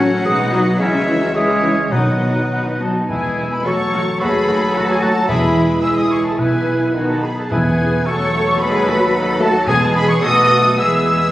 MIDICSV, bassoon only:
0, 0, Header, 1, 2, 480
1, 0, Start_track
1, 0, Key_signature, 4, "major"
1, 0, Tempo, 541516
1, 706, Time_signature, 2, 2, 24, 8
1, 1191, Tempo, 585938
1, 2631, Tempo, 544959
1, 5031, Tempo, 559701
1, 6951, Tempo, 540054
1, 8871, Tempo, 567644
1, 9793, End_track
2, 0, Start_track
2, 0, Title_t, "Bassoon"
2, 0, Program_c, 0, 70
2, 0, Note_on_c, 0, 61, 61
2, 224, Note_on_c, 0, 59, 72
2, 237, Note_off_c, 0, 61, 0
2, 689, Note_off_c, 0, 59, 0
2, 694, Note_on_c, 0, 56, 82
2, 1151, Note_off_c, 0, 56, 0
2, 1190, Note_on_c, 0, 56, 73
2, 1668, Note_on_c, 0, 54, 59
2, 1680, Note_off_c, 0, 56, 0
2, 2395, Note_off_c, 0, 54, 0
2, 2631, Note_on_c, 0, 47, 47
2, 3084, Note_off_c, 0, 47, 0
2, 3112, Note_on_c, 0, 54, 49
2, 3592, Note_off_c, 0, 54, 0
2, 3608, Note_on_c, 0, 54, 63
2, 4538, Note_off_c, 0, 54, 0
2, 4552, Note_on_c, 0, 52, 67
2, 4996, Note_off_c, 0, 52, 0
2, 5025, Note_on_c, 0, 52, 61
2, 5496, Note_off_c, 0, 52, 0
2, 5502, Note_on_c, 0, 52, 47
2, 5987, Note_on_c, 0, 51, 50
2, 6000, Note_off_c, 0, 52, 0
2, 6231, Note_off_c, 0, 51, 0
2, 6475, Note_on_c, 0, 52, 62
2, 6949, Note_on_c, 0, 54, 67
2, 6963, Note_off_c, 0, 52, 0
2, 8386, Note_off_c, 0, 54, 0
2, 8389, Note_on_c, 0, 59, 90
2, 8839, Note_off_c, 0, 59, 0
2, 8863, Note_on_c, 0, 59, 87
2, 9334, Note_off_c, 0, 59, 0
2, 9344, Note_on_c, 0, 59, 74
2, 9793, Note_off_c, 0, 59, 0
2, 9793, End_track
0, 0, End_of_file